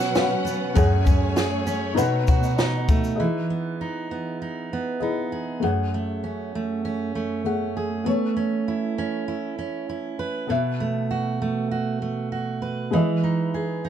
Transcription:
Already playing: string section B2 F#3 C#4 B4 F#5, steel-string acoustic guitar B2 F#3 C#4 F#4, felt piano F#4 B4 F#5
0.00 snare, shaker
0.15 steel-string acoustic guitar C#4, felt piano C#4 F#4 B4 F5, snare, shaker
0.24 felt piano F#5
0.45 steel-string acoustic guitar B3, shaker
0.74 steel-string acoustic guitar F#2 G#4, string section F#2 A3 C#5 G#5, felt piano C#4 G#4 A4, kick, shaker
0.78 felt piano F#5
1.05 steel-string acoustic guitar C#4, kick, shaker
1.36 steel-string acoustic guitar G#4, snare, shaker
1.67 steel-string acoustic guitar C#4, shaker
1.94 steel-string acoustic guitar B2, string section B2 D#4, felt piano D#4 A4 B4 F#5, shaker
2.27 steel-string acoustic guitar F#4, kick, shaker
2.43 shaker
2.58 steel-string acoustic guitar D#4, snare, shaker
2.89 steel-string acoustic guitar A3, kick, shaker
3.04 shaker
3.16 felt piano E4 G#4 D#5
3.20 steel-string acoustic guitar E3
3.50 steel-string acoustic guitar B3
3.81 steel-string acoustic guitar D#4
4.11 steel-string acoustic guitar B3
4.42 steel-string acoustic guitar D#4
4.73 steel-string acoustic guitar B3
5.00 steel-string acoustic guitar D#4, felt piano E4 G#4 D#5
5.32 steel-string acoustic guitar G#4
5.60 steel-string acoustic guitar F#2, felt piano A3 G#4
5.64 felt piano F#5
5.94 steel-string acoustic guitar A3
6.24 steel-string acoustic guitar C#4
6.55 steel-string acoustic guitar A3
6.85 steel-string acoustic guitar C#4
7.15 steel-string acoustic guitar A3
7.44 felt piano A3 G#4 F#5, steel-string acoustic guitar C#4
7.77 steel-string acoustic guitar G#4
8.04 steel-string acoustic guitar A3, felt piano B3 A4 C#5
8.37 steel-string acoustic guitar C#4
8.68 steel-string acoustic guitar E4
8.98 steel-string acoustic guitar C#4
9.28 steel-string acoustic guitar E4
9.59 steel-string acoustic guitar C#4
9.89 steel-string acoustic guitar E4
10.19 steel-string acoustic guitar B4
10.47 steel-string acoustic guitar B2, felt piano B3 A4
10.51 felt piano E5
10.80 steel-string acoustic guitar A3
11.11 steel-string acoustic guitar F#4
11.42 steel-string acoustic guitar A3
11.71 steel-string acoustic guitar F#4
12.02 steel-string acoustic guitar A3
12.32 steel-string acoustic guitar F#4
12.62 steel-string acoustic guitar B4
12.91 steel-string acoustic guitar E3, felt piano G#3 E4
12.95 felt piano D#5
13.24 steel-string acoustic guitar D#4
13.54 steel-string acoustic guitar G#4
13.85 steel-string acoustic guitar D#4

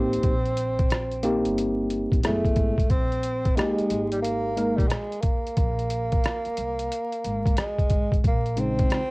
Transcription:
Already playing: upright bass A1, tine electric piano A#3 C4 D#4 G4, tenor saxophone C4
0.13 closed hi-hat
0.23 upright bass A#1, kick, closed hi-hat
0.45 closed hi-hat
0.57 closed hi-hat
0.79 kick, closed hi-hat
0.90 cross-stick, closed hi-hat
1.11 closed hi-hat
1.23 tine electric piano A#3 C4 D#4 G4, closed hi-hat
1.45 upright bass G1, closed hi-hat
1.58 closed hi-hat
1.90 closed hi-hat
2.12 upright bass A#1, kick, closed hi-hat
2.23 upright bass F#1, tine electric piano G#3 B3 E4 G#4, tenor saxophone A3, cross-stick, closed hi-hat
2.30 tine electric piano A3
2.45 kick, closed hi-hat
2.56 upright bass G#1, kick, closed hi-hat
2.78 kick, closed hi-hat
2.90 upright bass A#1, tenor saxophone C4, kick, closed hi-hat
3.12 closed hi-hat
3.23 closed hi-hat
3.45 kick, closed hi-hat
3.56 tenor saxophone G#3, tine electric piano G#3 A#3 D#4 G4, cross-stick, closed hi-hat
3.79 muted upright bass stroke, closed hi-hat
3.90 upright bass G#1, closed hi-hat
4.12 tenor saxophone G3, closed hi-hat
4.22 tenor saxophone A#3, closed hi-hat
4.57 tine electric piano G#3 A#3 D#4 A#4, closed hi-hat
4.77 upright bass A#1, tenor saxophone G3, kick, closed hi-hat
4.88 tenor saxophone G#3, cross-stick, closed hi-hat
5.12 closed hi-hat
5.22 tenor saxophone A#3, kick, closed hi-hat
5.47 closed hi-hat
5.57 upright bass A#1, kick, closed hi-hat
5.79 closed hi-hat
5.90 closed hi-hat
6.12 kick, closed hi-hat
6.24 cross-stick, closed hi-hat
6.45 muted upright bass stroke, closed hi-hat
6.57 upright bass C2, closed hi-hat
6.79 closed hi-hat
6.92 closed hi-hat
7.12 closed hi-hat
7.24 upright bass G#1, closed hi-hat
7.45 kick, closed hi-hat
7.57 tenor saxophone G#3, cross-stick, closed hi-hat
7.78 kick, closed hi-hat
7.90 upright bass G#1, kick, closed hi-hat
8.12 kick, closed hi-hat
8.24 upright bass A#1, tenor saxophone A#3, kick, closed hi-hat
8.46 closed hi-hat
8.57 tine electric piano C#3 G#3 C4 D#4, tenor saxophone C4, closed hi-hat
8.79 kick, closed hi-hat
8.90 cross-stick, closed hi-hat

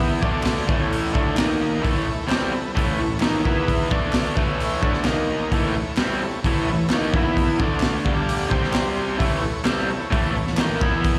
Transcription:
Already playing: overdriven electric guitar E3 B3 E4, transistor combo organ E4 B4 E5
0.00 kick, open hi-hat
0.20 overdriven electric guitar D3 A3, transistor combo organ D4 A4 D5, kick
0.25 overdriven electric guitar D4
0.43 snare, clap, open hi-hat
0.66 overdriven electric guitar A2 E3 A3, transistor combo organ E4 A4 C#5, kick
0.92 open hi-hat
1.11 overdriven electric guitar D3 A3, transistor combo organ E4 A4 C#5
1.15 overdriven electric guitar D4, kick
1.36 overdriven electric guitar D#3 A#3 D#4, transistor combo organ D#4 A#4 D#5, snare, clap, open hi-hat
1.59 transistor combo organ D#4 A#4 D#5
1.81 overdriven electric guitar A2 E3 A3, transistor combo organ E4 A4 C#5, kick, open hi-hat
2.06 transistor combo organ E4 A4 C#5, muted overdriven electric guitar stroke
2.27 overdriven electric guitar C3 G3 C4, transistor combo organ E4 A4, clap
2.31 transistor combo organ C#5, snare, open hi-hat
2.51 transistor combo organ E4 A4 B4, muted overdriven electric guitar stroke
2.74 overdriven electric guitar A2 E3 A3, transistor combo organ E4 A4 C#5, kick
2.78 open hi-hat
2.98 overdriven electric guitar A2 E3, transistor combo organ E4 A4 C#5
3.20 overdriven electric guitar D#3 A#3 D#4, transistor combo organ E4 A4 C#5, snare, clap, open hi-hat
3.44 overdriven electric guitar E3 B3 E4, transistor combo organ E4 B4 E5, kick
3.68 kick, open hi-hat
3.90 overdriven electric guitar D3 A3 D4, transistor combo organ D4 A4 D5, kick
4.13 snare, clap, open hi-hat
4.36 overdriven electric guitar A2 E3 A3, transistor combo organ E4 A4 C#5, kick
4.60 open hi-hat
4.82 overdriven electric guitar D3 A3 D4, transistor combo organ E4 A4 C#5, kick
4.94 snare
5.05 overdriven electric guitar D#3 A#3 D#4, transistor combo organ D#4 A#4 D#5, snare, clap, open hi-hat
5.29 transistor combo organ D#4 A#4 D#5
5.52 overdriven electric guitar A2 E3 A3, transistor combo organ E4 A4 C#5, kick, open hi-hat
5.75 transistor combo organ E4 A4 C#5, muted overdriven electric guitar stroke
5.97 overdriven electric guitar C3 G3 C4, transistor combo organ E4 A4 C#5, snare, clap, open hi-hat
6.20 transistor combo organ E4 A4 C#5, muted overdriven electric guitar stroke
6.44 overdriven electric guitar A2 E3 A3, transistor combo organ E4 A4 C#5, kick, open hi-hat
6.68 overdriven electric guitar A2 E3, transistor combo organ E4 A4 C#5
6.89 transistor combo organ E4 A4 C#5, snare, clap, open hi-hat
6.93 overdriven electric guitar D#3 A#3 D#4
7.13 overdriven electric guitar E3 B3 E4, transistor combo organ E4 B4 E5, kick
7.37 kick, open hi-hat
7.59 overdriven electric guitar D3 A3 D4, transistor combo organ D4 A4 D5, kick
7.80 snare, clap, open hi-hat
8.04 overdriven electric guitar G2 D3 G3, transistor combo organ D4 G4 D5, kick
8.29 open hi-hat
8.49 overdriven electric guitar C3 G3 C4, transistor combo organ C4 G4 C5, kick
8.64 snare
8.73 snare, clap, open hi-hat
8.95 transistor combo organ C4 G4 C5
9.17 overdriven electric guitar A2 E3 A3, transistor combo organ E4 A4 C#5, kick, open hi-hat
9.41 transistor combo organ E4 A4 C#5, muted overdriven electric guitar stroke
9.64 overdriven electric guitar C3 G3 C4, transistor combo organ E4 A4 E5, snare, clap, open hi-hat
9.88 transistor combo organ E4 A4 C#5, muted overdriven electric guitar stroke
10.10 overdriven electric guitar A2 E3 A3, transistor combo organ E4 A4 C#5, kick, open hi-hat
10.33 overdriven electric guitar A2 E3, transistor combo organ E4 A4 C#5
10.47 snare
10.55 overdriven electric guitar D#3, transistor combo organ E4 A4 C#5, snare, clap, open hi-hat
10.59 overdriven electric guitar A#3 D#4
10.78 overdriven electric guitar E3, transistor combo organ E4 B4 E5, kick
10.83 overdriven electric guitar B3 E4
11.04 kick, open hi-hat

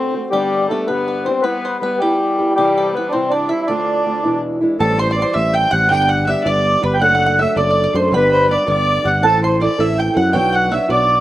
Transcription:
Already playing: steel-string acoustic guitar D3 A3 C4 F#4, accordion C4, fiddle C4, five-string banjo C5
0.13 steel-string acoustic guitar A3 C4 F#4
0.30 steel-string acoustic guitar G2 D3 G3 B3 D4 G4, accordion G3, fiddle G3, five-string banjo G4
0.68 steel-string acoustic guitar G3 B3 D4, accordion A3, five-string banjo A4
0.72 fiddle A3, steel-string acoustic guitar G4
0.87 steel-string acoustic guitar D3 G3 B3 D4 G4, accordion B3, five-string banjo B4
0.91 steel-string acoustic guitar G2, fiddle B3
1.08 five-string banjo B4
1.24 accordion C4, steel-string acoustic guitar G4, five-string banjo C5
1.28 steel-string acoustic guitar G3 B3 D4, fiddle C4
1.42 steel-string acoustic guitar G3 B3 E4 G4, accordion B3, fiddle B3, five-string banjo B4
1.65 five-string banjo C5
1.79 steel-string acoustic guitar G3 B3, accordion B3, fiddle B3, five-string banjo B4
1.83 steel-string acoustic guitar E4 G4
1.98 accordion G3, fiddle G3, steel-string acoustic guitar E4 G4, five-string banjo G4
2.03 steel-string acoustic guitar G3 B3
2.39 steel-string acoustic guitar B3 E4 G4
2.55 steel-string acoustic guitar C3 E3 G3 C4, accordion G3, fiddle G3, five-string banjo G4
2.59 steel-string acoustic guitar E4
2.77 five-string banjo A4
2.93 steel-string acoustic guitar E3 G3, accordion B3, fiddle B3, five-string banjo B4
2.98 steel-string acoustic guitar C4 E4
3.09 accordion C4 D4
3.13 steel-string acoustic guitar C3 E3 G3 C4 E4, fiddle C4, five-string banjo C5
3.30 accordion D4, fiddle D4, five-string banjo D5
3.49 steel-string acoustic guitar G3 C4 E4, accordion E4, fiddle E4, five-string banjo E5
3.62 accordion E4
3.67 steel-string acoustic guitar D3 A3 C4 F4, accordion D4, fiddle D4, five-string banjo D5
4.05 steel-string acoustic guitar D3 A3 C4 F4
4.23 steel-string acoustic guitar E2 B2 E3 G#3 D4 E4
4.61 steel-string acoustic guitar E3 G#3 D4 E4
4.79 fretless electric bass A1, steel-string acoustic guitar A2 E3 G3 C4 G4, accordion A4, fiddle A4, five-string banjo A5
4.99 fiddle C5, accordion C5, five-string banjo C6
5.11 fiddle D5, five-string banjo C6
5.17 steel-string acoustic guitar E3 G3 C4 G4, accordion D5
5.22 fiddle C5, five-string banjo C6
5.34 fretless electric bass A1, steel-string acoustic guitar A2 E3 G3 C4 G4, five-string banjo E5, accordion E5, fiddle E5
5.54 five-string banjo G5, accordion G5, fiddle G5
5.71 fretless electric bass A1, steel-string acoustic guitar G3 C4 G4, five-string banjo F#5, fiddle F#5, accordion F#5
5.89 fretless electric bass G1, steel-string acoustic guitar G2 D3 G3 B3 D4 G4, five-string banjo G5, fiddle G5, accordion G5
6.09 five-string banjo F#5, fiddle F#5, accordion F#5
6.27 steel-string acoustic guitar G3 B3 D4 G4, fiddle E5, five-string banjo E5, accordion E5
6.44 fretless electric bass G1, steel-string acoustic guitar G2 D3 G3 B3 D4 G4, fiddle D5, five-string banjo D5
6.48 accordion D5
6.82 fretless electric bass G1, steel-string acoustic guitar G3 B3 D4 G4, fiddle B4, accordion B4, five-string banjo B5
6.94 accordion G5
7.00 fretless electric bass F#1, steel-string acoustic guitar F#3 A3 D4 A4, fiddle F#5, accordion F#5, five-string banjo F#5
7.15 five-string banjo F#5
7.26 five-string banjo F#5
7.39 steel-string acoustic guitar F#3 A3 D4 A4, five-string banjo E5, fiddle E5, accordion E5
7.49 accordion E5
7.56 fretless electric bass F#1, steel-string acoustic guitar F#3 A3 D4 A4, five-string banjo D5, accordion D5, fiddle D5
7.71 five-string banjo D5
7.84 five-string banjo D5
7.94 fretless electric bass F#2, steel-string acoustic guitar A3 D4 A4, accordion C5, fiddle C5, five-string banjo C6
8.12 fretless electric bass G1, steel-string acoustic guitar G2 D3 G3 B3 D4 G4, fiddle B4, five-string banjo B5
8.16 accordion B4
8.31 fiddle C5
8.49 steel-string acoustic guitar G3 B3 D4 G4, fiddle D5, five-string banjo D5, accordion D5
8.66 fretless electric bass G1, steel-string acoustic guitar G2 D3 G3 B3 D4 G4, five-string banjo D5, fiddle D5, accordion D5
9.04 fretless electric bass G1, steel-string acoustic guitar G3 B3 D4 G4, five-string banjo F#5, accordion F#5, fiddle F#5
9.23 fretless electric bass A1, steel-string acoustic guitar A2 E3 C4 E4 A4, accordion A4, fiddle A4, five-string banjo A5
9.43 accordion C5, fiddle C5, five-string banjo C6
9.60 steel-string acoustic guitar E3 C4 E4 A4, five-string banjo D5, fiddle D5, accordion D5
9.78 fretless electric bass A1, steel-string acoustic guitar A2 E3 C4 E4 A4, five-string banjo E5, accordion E5, fiddle E5
9.99 accordion G5, fiddle G5, five-string banjo G5
10.15 fretless electric bass F#2, steel-string acoustic guitar C4 E4 A4, fiddle F#5, five-string banjo F#5
10.19 accordion F#5
10.33 fretless electric bass B1, steel-string acoustic guitar B2 F#3 B3 D4 F#4, five-string banjo G5, fiddle G5
10.38 accordion G5
10.53 five-string banjo F#5, fiddle F#5, accordion F#5
10.72 steel-string acoustic guitar F#3 B3 D4 F#4, five-string banjo E5, accordion E5, fiddle E5
10.89 fretless electric bass B1, steel-string acoustic guitar B2 F#3 B3 D4 F#4, five-string banjo D5, fiddle D5, accordion D5

